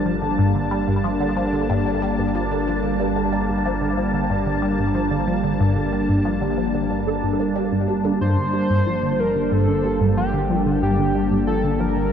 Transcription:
0.00 8.18 G1 medium
0.00 12.13 G3 medium
0.00 12.13 A#3 medium
0.00 12.13 D4 medium
0.00 12.13 A5 medium
0.06 0.12 F3 medium
0.22 0.32 D3 medium
0.38 0.53 G2 loud
0.55 0.69 D3 medium
0.71 0.81 G3 medium
0.87 0.97 G2 medium
1.04 1.10 F3 medium
1.20 1.26 D3 medium
1.36 1.42 F3 medium
1.53 1.62 D3 medium
1.69 1.84 G2 loud
1.86 2.00 D3 medium
2.02 2.11 G3 medium
2.19 2.28 G2 medium
2.35 2.40 F3 medium
2.51 2.57 D3 medium
2.67 2.73 F3 medium
2.83 2.93 D3 medium
3.00 3.14 G2 loud
3.16 3.30 D3 medium
3.33 3.42 G3 medium
3.49 3.58 G2 medium
3.65 3.71 F3 medium
3.81 3.87 D3 medium
3.97 4.03 F3 medium
4.13 4.23 D3 medium
4.30 4.44 G2 loud
4.46 4.61 D3 medium
4.62 4.72 G3 medium
4.79 4.88 G2 medium
4.95 5.01 F3 medium
5.11 5.17 D3 medium
5.27 5.33 F3 medium
5.43 5.53 D3 medium
5.60 5.75 G2 loud
5.76 5.91 D3 medium
5.93 6.02 G3 medium
6.09 6.19 G2 medium
6.25 6.31 F3 medium
6.41 6.47 D3 medium
6.58 6.64 F3 medium
6.74 6.84 D3 medium
6.90 7.05 G2 medium
7.07 7.21 D3 medium
7.23 7.33 G2 medium
7.40 7.54 A#3 medium
7.55 7.70 G3 medium
7.72 7.86 G2 medium
7.88 7.98 G3 medium
8.04 8.10 D3 loud
8.21 12.13 G1 medium
8.21 8.35 G2 loud
8.21 9.21 C5 loud
8.37 8.52 D3 medium
8.53 8.63 G3 medium
8.70 8.80 G2 medium
8.86 8.92 F3 medium
9.03 9.08 D3 medium
9.19 9.25 F3 medium
9.19 9.45 A#4 loud
9.35 9.45 D3 medium
9.45 9.54 A#4 medium
9.51 9.66 G2 loud
9.51 10.17 A4 loud
9.68 9.82 D3 medium
9.84 9.94 G3 medium
10.00 10.10 G2 medium
10.17 10.23 F3 medium
10.17 10.63 G4 medium
10.33 10.39 D3 medium
10.50 10.55 F3 medium
10.66 10.76 D3 medium
10.82 10.96 G2 loud
10.82 11.44 G4 loud
10.99 11.13 D3 medium
11.15 11.24 G3 medium
11.31 11.41 G2 medium
11.47 11.53 F3 medium
11.47 11.81 A4 medium
11.64 11.69 D3 medium
11.80 11.86 F3 medium
11.80 12.13 A#4 loud
11.96 12.06 D3 medium

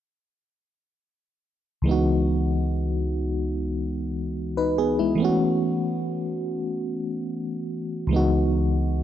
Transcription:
1.82 5.13 C#2 medium
1.82 5.14 E3 medium
1.82 4.32 G#3 medium
1.87 4.33 B3 medium
1.87 4.33 D#4 medium
1.87 4.34 F#4 medium
4.57 4.77 D#4 medium
4.57 4.77 B4 medium
4.78 4.98 B3 medium
4.78 4.98 G#4 medium
4.99 5.39 G#3 medium
4.99 5.38 E4 medium
5.15 8.05 E3 medium
5.15 8.06 A3 medium
5.20 8.07 B3 medium
5.20 8.08 C#4 medium
5.25 8.09 F#4 medium
8.07 9.03 C#2 medium
8.07 9.03 E3 medium
8.07 9.03 G#3 medium
8.13 9.03 B3 medium
8.13 9.03 D#4 medium
8.13 9.03 F#4 medium

